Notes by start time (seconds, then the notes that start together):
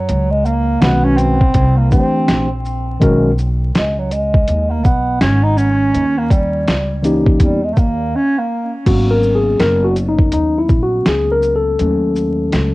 Already playing: F#3
0.09 C#2, closed hi-hat
0.31 G#3
0.45 A#3, shaker
0.81 B1 D#3 G#3 B3 C#4 F#4 B4, snare, closed hi-hat
1.04 C#4
1.17 C4, closed hi-hat, shaker
1.41 kick
1.54 C2, kick, closed hi-hat
1.77 A#3
1.91 D2 E3 A3 C4 D4 G4 B4, kick, shaker
2.00 C5
2.28 A#1, snare, closed hi-hat
2.65 shaker
3.00 B1 D#3 G#3 C#4 F#4 A#4, kick, closed hi-hat
3.38 shaker
3.75 C#2 G#3, snare, closed hi-hat
3.98 F#3
4.11 G#3, closed hi-hat, shaker
4.34 kick
4.48 D#2, closed hi-hat
4.70 A#3
4.84 B1 B3, kick, shaker
5.21 G#1 C#4, snare, closed hi-hat
5.43 D#4
5.57 C#4, shaker
5.95 D#2, closed hi-hat
6.18 A#3
6.30 G3, kick, closed hi-hat, shaker
6.68 C#2, snare, closed hi-hat
7.02 E3 A#3 C#4 D#4 G4, closed hi-hat, shaker
7.26 kick
7.40 E2 G3, kick, closed hi-hat
7.64 G#3
7.73 A3, kick, shaker
7.77 D#2 A#3
8.15 C#4
8.38 A#3
8.86 G#1 F#3 A#3 B3 C#4 F#4, kick, closed hi-hat, crash
9.11 A#4
9.23 shaker
9.35 G#4
9.60 F#1 A#4, snare, closed hi-hat
9.84 F#4
9.96 closed hi-hat, shaker
10.09 D#4
10.19 kick
10.32 D#2 D#4, closed hi-hat
10.58 E4
10.69 A#1, kick, shaker
10.83 F#4
11.06 C#2 G#4, snare, closed hi-hat
11.32 A#4
11.43 shaker
11.56 A4
11.79 D#2 F#3 A3 C#4, closed hi-hat
12.16 shaker
12.52 C#2, snare, closed hi-hat